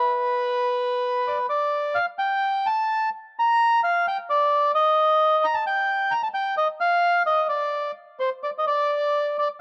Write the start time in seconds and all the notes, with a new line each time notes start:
Already playing: B4
1.28 D5
1.49 D5
1.95 F5
2.19 G5
2.66 A5
3.39 A#5
3.84 F5
4.08 G5
4.30 D5
4.75 D#5
5.44 A#5
5.54 A5
5.67 G5
6.11 A#5
6.23 A5
6.34 G5
6.57 D#5
6.80 F5
7.26 D#5
7.49 D5
8.20 C5
8.44 D5
8.58 D#5
8.67 D5
9.39 D5